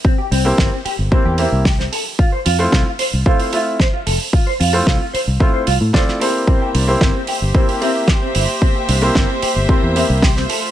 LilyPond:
<<
  \new Staff \with { instrumentName = "String section" } { \time 4/4 \key c \mixolydian \tempo 4 = 112 << { r1 | r1 | r1 | <c'' e''>1~ |
<c'' e''>1 | } \\ { r1 | r1 | r1 | <bes g'>1~ |
<bes g'>2.~ <bes g'>8 <a f'>8 | } >> }
  \new Staff \with { instrumentName = "Clean electric guitar" } { \time 4/4 \key c \mixolydian c'16 g'16 c'16 r16 c'16 c'16 g'16 r16 c'16 g'16 c'16 r16 g'16 c'16 a'16 r16 | f'16 c''16 f'16 r16 f'16 f'16 c''16 r16 f'16 c''16 f'16 r16 c''16 f'16 a'16 r16 | f'16 c''16 f'16 r16 f'16 f'16 c''16 r16 f'16 c''16 f'16 r16 c''16 f'16 a'16 r16 | c'16 g'16 d'16 r16 c'16 c'16 g'16 r16 c'16 g'16 c'16 r16 g'16 c'16 e'16 r16 |
c'16 g'16 d'16 r16 c'16 c'16 g'16 r16 c'16 g'16 c'16 r16 g'16 c'16 a'16 r16 | }
  \new Staff \with { instrumentName = "Grand piano" } { \time 4/4 \key c \mixolydian r8. <bes c' e' g' c''>8 r8. <bes c' e' g' c''>8 <bes c' e' g' e''>8 r4 | r8. <a c' e' f' c''>8 r8. <a c' e' f' c''>8 <a c' e' f' e''>8 r4 | r8. <a c' e' f' c''>8 r8. <a c' e' f' c''>8 r8 <a c' e' f' d''>8 <bes c' e' g' c''>8~ | <bes c' e' g' c''>8. <bes c' e' g' c''>8 r8. <bes c' e' g' c''>8 <bes c' e' g' e''>8 r4 |
r8. <bes c' e' g' c''>8 r8. <bes c' e' g' c''>8 <bes c' e' g' e''>8 r4 | }
  \new Staff \with { instrumentName = "Fingered electric bass" } { \clef bass \time 4/4 \key c \mixolydian r8 c,16 r16 g,,16 r8 g,,16 r16 e,16 r16 c,8. r8 | r8 f,16 r16 c,16 r8 c,16 r4. f,,16 r16 | r8 f,16 r16 c,16 r8 c,16 r8 c,16 a,16 r4 | r8 c,16 r16 g,,16 r8 g,,16 r4. g,,16 r16 |
r8 c,16 r16 g,,16 r8 g,,16 r16 e,16 r16 c,8. r8 | }
  \new DrumStaff \with { instrumentName = "Drums" } \drummode { \time 4/4 bd8 hho8 <bd sn>8 hho8 bd8 hho8 <hho bd sn>16 sn16 hho8 | bd8 hho8 <bd sn>8 hho8 bd16 hho16 hho8 <bd sn>8 hho8 | bd8 hho8 <bd sn>8 hho8 bd8 hho8 <hho bd sn>16 sn16 hho8 | bd8 hho8 <bd sn>8 hho8 bd16 hho16 hho8 <bd sn>8 hho8 |
bd8 hho8 <bd sn>8 hho8 bd8 hho8 <hho bd sn>16 sn16 hho8 | }
>>